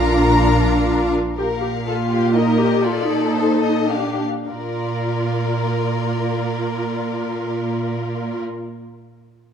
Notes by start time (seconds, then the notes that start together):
Already playing: A#1 D4 F4 A#4 F5 A#5
1.38 A#2 G4 A#4 F5
1.62 G4
1.86 F4 A4
2.10 G4
2.35 D#4 A#4 D#5
2.59 G4
2.84 F4 A4 D5
3.09 D#4
3.36 C5
3.62 D#5
3.90 D4 G4 F5
4.49 A#2 F4 A#4 D5